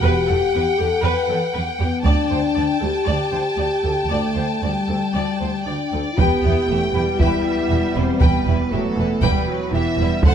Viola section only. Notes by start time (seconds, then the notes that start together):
0.03 B4
0.28 A4
0.55 B4
0.78 G4
1.03 B4
1.30 A4
1.54 B4
1.80 G4
2.05 D5
2.31 C5
2.55 D5
2.81 A4
3.06 D5
3.33 C5
3.58 D5
3.83 A4
4.09 D5
4.35 C5
4.62 D5
4.89 A4
5.14 D5
5.40 C5
5.67 D5
5.92 A4
6.19 B3
6.69 A3
6.94 G3
8.72 F#3
8.98 E3
9.23 G3
9.48 F#3
9.73 E3
9.98 G3
10.24 A3